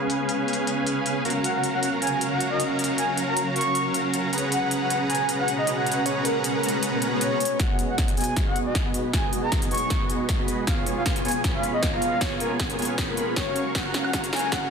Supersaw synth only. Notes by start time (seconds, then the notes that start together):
Already playing: C#4 G#4 B4 F5 G#5
1.25 C#4 F#4 A#4 F5 A#5
4.33 C#4 G#4 B4 F#5 A#5
7.60 B3 F#4 G#4
7.98 B3 G#4 D#5
8.17 B3 F#4 G#4 D#5 G#5
8.37 F#4 C#6
8.75 B3 F#4
8.85 B3 F#4 G#4 D#5 B5
9.14 G#4 G#5
9.71 B3 F#4 G#4 D#5 G#5
9.90 F#4
10.39 B3 F#4 G#4 D#5 B5
11.25 B3 F4 G#4 C#5 G#5
11.44 B3 C#5 B5
11.83 F4 G#4 C#5 A#5
11.93 B3 F4 G#4 C#5 A#5
12.79 B3 F4 G#4 C#5 G#5
12.98 B3 F4 G#4 C#5
13.47 C#4 F#4 A#4 F5 C#6
13.75 C#4
14.14 C#4 F#4
14.33 C#4 F#4 A#4 F5 A#5
14.52 C#4 F5